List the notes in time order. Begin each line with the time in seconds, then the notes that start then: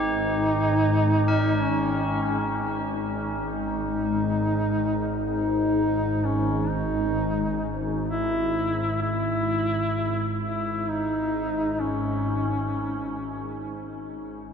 Already playing: G#1 G#2 D#4 G4
1.28 A#4
1.62 C#4
3.45 D#4
5.32 D#4
6.24 C#4
6.69 D#4
8.10 E4
9.02 E4
10.42 E4
10.88 D#4
11.80 C#4